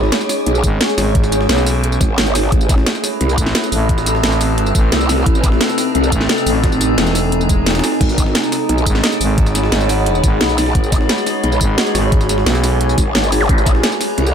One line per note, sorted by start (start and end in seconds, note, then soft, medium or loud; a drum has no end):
0.00 0.11 G#1 loud
0.00 2.48 G#3 medium
0.00 2.49 C#4 medium
0.00 2.48 G#4 medium
0.00 2.52 G#4 medium
0.00 2.52 C#5 medium
0.00 2.52 C#6 medium
0.00 snare soft
0.12 snare loud
0.12 closed hi-hat medium
0.21 snare medium
0.21 tambourine soft
0.29 snare medium
0.29 snare soft
0.29 closed hi-hat medium
0.29 open hi-hat medium
0.29 tambourine medium
0.46 0.62 B1 loud
0.46 closed hi-hat medium
0.55 tambourine soft
0.64 0.79 G#1 loud
0.64 kick medium
0.64 closed hi-hat medium
0.64 tambourine medium
0.81 snare loud
0.81 closed hi-hat medium
0.89 closed hi-hat soft
0.89 tambourine soft
0.98 1.48 G#1 loud
0.98 snare loud
0.98 snare soft
0.98 closed hi-hat medium
0.98 open hi-hat medium
0.98 tambourine medium
1.15 kick loud
1.15 closed hi-hat medium
1.24 snare medium
1.24 tambourine soft
1.32 snare soft
1.32 closed hi-hat medium
1.32 tambourine medium
1.41 snare medium
1.49 1.99 B1 loud
1.49 snare loud
1.49 closed hi-hat medium
1.49 open hi-hat medium
1.58 snare medium
1.58 tambourine soft
1.66 snare soft
1.66 closed hi-hat medium
1.66 open hi-hat medium
1.66 tambourine medium
1.84 closed hi-hat medium
1.92 tambourine soft
2.01 2.51 G#1 loud
2.01 kick loud
2.01 snare medium
2.01 closed hi-hat medium
2.01 tambourine medium
2.18 snare loud
2.18 closed hi-hat medium
2.27 tambourine soft
2.35 snare soft
2.35 closed hi-hat medium
2.35 open hi-hat medium
2.35 tambourine medium
2.44 snare soft
2.52 2.85 A1 medium
2.52 7.97 A3 medium
2.52 5.24 E4 medium
2.52 8.01 A4 medium
2.52 7.97 B4 medium
2.52 kick loud
2.52 closed hi-hat medium
2.61 tambourine soft
2.69 kick loud
2.69 snare soft
2.69 closed hi-hat medium
2.69 tambourine medium
2.75 8.01 C4 medium
2.75 snare soft
2.86 5.67 A5 medium
2.86 snare loud
2.86 closed hi-hat medium
2.95 snare soft
2.95 tambourine soft
3.04 8.01 E6 medium
3.04 snare medium
3.04 snare soft
3.04 closed hi-hat medium
3.04 open hi-hat medium
3.04 tambourine medium
3.21 3.36 C2 loud
3.21 closed hi-hat medium
3.29 tambourine soft
3.38 3.54 A1 loud
3.38 kick medium
3.38 closed hi-hat medium
3.38 tambourine medium
3.46 snare soft
3.55 snare loud
3.55 closed hi-hat medium
3.64 closed hi-hat soft
3.64 tambourine soft
3.72 4.22 A1 loud
3.72 closed hi-hat medium
3.72 open hi-hat medium
3.72 tambourine medium
3.89 kick loud
3.89 closed hi-hat medium
3.98 snare medium
3.98 tambourine soft
4.06 snare soft
4.06 closed hi-hat medium
4.06 tambourine medium
4.15 snare medium
4.23 4.74 A1 loud
4.23 snare loud
4.23 closed hi-hat medium
4.23 open hi-hat medium
4.32 snare medium
4.32 tambourine soft
4.41 snare soft
4.41 closed hi-hat medium
4.41 open hi-hat medium
4.41 tambourine medium
4.58 closed hi-hat medium
4.66 tambourine soft
4.75 4.91 A1 loud
4.75 kick loud
4.75 snare soft
4.75 closed hi-hat medium
4.75 tambourine medium
4.92 5.25 C2 loud
4.92 snare loud
4.92 closed hi-hat medium
5.01 tambourine soft
5.09 snare soft
5.09 closed hi-hat medium
5.09 open hi-hat medium
5.09 tambourine medium
5.18 snare soft
5.26 5.59 A1 loud
5.26 13.45 D#4 medium
5.26 kick loud
5.26 closed hi-hat medium
5.35 tambourine soft
5.44 kick loud
5.44 snare soft
5.44 closed hi-hat medium
5.44 closed hi-hat loud
5.44 tambourine medium
5.52 snare soft
5.56 8.01 G#5 medium
5.61 snare loud
5.61 closed hi-hat loud
5.61 closed hi-hat medium
5.69 snare soft
5.69 tambourine soft
5.78 snare medium
5.78 snare soft
5.78 closed hi-hat medium
5.78 open hi-hat medium
5.78 tambourine medium
5.95 6.11 C2 loud
5.95 closed hi-hat medium
6.04 tambourine soft
6.12 6.28 A1 loud
6.12 kick medium
6.12 closed hi-hat medium
6.12 closed hi-hat loud
6.12 tambourine medium
6.21 snare soft
6.29 snare loud
6.29 closed hi-hat medium
6.38 closed hi-hat soft
6.38 tambourine soft
6.46 6.96 A1 loud
6.46 closed hi-hat medium
6.46 open hi-hat medium
6.46 tambourine medium
6.55 snare soft
6.64 kick loud
6.64 snare loud
6.64 closed hi-hat medium
6.72 snare soft
6.72 tambourine soft
6.81 snare soft
6.81 closed hi-hat medium
6.81 closed hi-hat loud
6.81 tambourine medium
6.98 7.82 E1 loud
6.98 snare loud
6.98 closed hi-hat medium
6.98 open hi-hat medium
7.06 snare medium
7.06 snare soft
7.06 tambourine soft
7.15 snare soft
7.15 closed hi-hat medium
7.15 open hi-hat medium
7.15 tambourine medium
7.32 closed hi-hat medium
7.32 swell medium
7.41 tambourine soft
7.49 kick loud
7.49 closed hi-hat medium
7.49 closed hi-hat loud
7.49 tambourine medium
7.66 snare medium
7.66 snare loud
7.66 closed hi-hat medium
7.71 snare medium
7.71 closed hi-hat medium
7.75 snare medium
7.75 closed hi-hat medium
7.75 tambourine soft
7.79 snare medium
7.79 closed hi-hat medium
7.84 snare loud
7.84 snare soft
7.84 closed hi-hat medium
7.84 open hi-hat medium
7.84 tambourine medium
7.92 snare soft
8.01 8.34 G#1 loud
8.01 13.45 G#3 medium
8.01 10.72 G#4 medium
8.01 13.49 G#4 medium
8.01 kick loud
8.01 closed hi-hat medium
8.01 crash medium
8.09 tambourine soft
8.18 13.49 C#5 medium
8.18 13.49 B5 medium
8.18 kick loud
8.18 snare soft
8.18 closed hi-hat medium
8.18 closed hi-hat loud
8.18 tambourine medium
8.26 snare soft
8.35 snare loud
8.35 closed hi-hat medium
8.44 snare medium
8.44 tambourine soft
8.50 11.44 F#5 medium
8.50 snare medium
8.50 snare soft
8.50 closed hi-hat medium
8.50 open hi-hat medium
8.50 tambourine medium
8.69 8.85 B1 loud
8.69 closed hi-hat medium
8.78 tambourine soft
8.86 9.02 G#1 loud
8.86 kick medium
8.86 closed hi-hat medium
8.86 closed hi-hat loud
8.86 tambourine medium
8.95 snare soft
8.95 snare medium
9.04 snare loud
9.04 closed hi-hat medium
9.12 closed hi-hat soft
9.12 tambourine soft
9.21 9.71 G#1 loud
9.21 closed hi-hat medium
9.21 open hi-hat medium
9.21 tambourine medium
9.38 kick loud
9.38 closed hi-hat medium
9.46 snare medium
9.46 tambourine soft
9.55 snare soft
9.55 closed hi-hat medium
9.55 tambourine medium
9.64 snare medium
9.72 10.22 G#1 loud
9.72 snare loud
9.72 closed hi-hat medium
9.72 open hi-hat medium
9.81 snare medium
9.81 tambourine soft
9.89 snare soft
9.89 closed hi-hat medium
9.89 open hi-hat medium
9.89 tambourine medium
10.06 closed hi-hat medium
10.15 tambourine soft
10.24 10.39 G#1 loud
10.24 kick loud
10.24 snare medium
10.24 closed hi-hat medium
10.24 closed hi-hat loud
10.24 tambourine medium
10.41 10.74 B1 medium
10.41 snare loud
10.41 closed hi-hat medium
10.49 tambourine soft
10.58 snare medium
10.58 closed hi-hat medium
10.58 open hi-hat medium
10.58 tambourine medium
10.66 snare medium
10.75 11.08 G#1 loud
10.75 13.47 F#4 medium
10.75 kick loud
10.75 closed hi-hat medium
10.84 tambourine soft
10.92 kick loud
10.92 snare soft
10.92 closed hi-hat medium
10.92 tambourine medium
11.01 snare soft
11.09 snare loud
11.09 closed hi-hat medium
11.18 snare medium
11.18 tambourine soft
11.26 snare medium
11.26 snare soft
11.26 closed hi-hat medium
11.26 open hi-hat medium
11.26 tambourine medium
11.34 13.49 G#5 medium
11.44 11.59 B1 loud
11.44 closed hi-hat medium
11.52 tambourine soft
11.61 11.76 G#1 loud
11.61 kick medium
11.61 closed hi-hat medium
11.61 tambourine medium
11.78 snare loud
11.78 closed hi-hat medium
11.86 closed hi-hat soft
11.86 tambourine soft
11.95 12.45 G#1 loud
11.95 snare loud
11.95 snare soft
11.95 closed hi-hat medium
11.95 open hi-hat medium
11.95 tambourine medium
12.12 kick loud
12.12 closed hi-hat medium
12.21 snare medium
12.21 tambourine soft
12.29 snare soft
12.29 closed hi-hat medium
12.29 tambourine medium
12.38 snare medium
12.46 12.96 B1 loud
12.46 snare loud
12.46 closed hi-hat medium
12.46 open hi-hat medium
12.55 snare medium
12.55 tambourine soft
12.64 snare soft
12.64 closed hi-hat medium
12.64 open hi-hat medium
12.64 tambourine medium
12.81 closed hi-hat medium
12.89 tambourine soft
12.98 13.48 G#1 loud
12.98 kick loud
12.98 snare medium
12.98 closed hi-hat medium
12.98 tambourine medium
13.15 snare loud
13.15 closed hi-hat medium
13.24 tambourine soft
13.32 snare soft
13.32 closed hi-hat medium
13.32 open hi-hat medium
13.32 tambourine medium
13.41 snare soft
13.41 zap medium
13.49 13.82 A1 loud
13.49 14.34 A3 medium
13.49 14.34 E4 medium
13.49 14.34 A4 medium
13.49 14.34 B4 medium
13.49 kick loud
13.49 closed hi-hat medium
13.58 tambourine soft
13.66 kick loud
13.66 snare soft
13.66 closed hi-hat medium
13.66 tambourine medium
13.73 14.34 C4 medium
13.73 snare soft
13.83 snare loud
13.83 closed hi-hat medium
13.92 14.34 E5 loud
13.92 snare medium
13.92 tambourine soft
14.01 snare medium
14.01 snare soft
14.01 closed hi-hat medium
14.01 open hi-hat medium
14.01 tambourine medium
14.18 14.34 C2 loud
14.18 closed hi-hat medium
14.26 tambourine soft